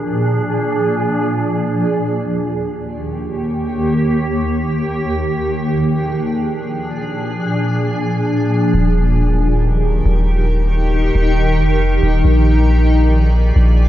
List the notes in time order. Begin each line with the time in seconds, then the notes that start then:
Already playing: A#2 F3 D4 G#4
1.74 D#2 D#3 A#3 G4
5.24 A#2 F3 D4 G#4
8.74 D#1 D#3 D#4 G4 A#4
10.06 D#1
11.15 D#1
11.59 F1
12.03 D#1
12.25 A#1 A#3 F4 G#4 D5
13.56 A#1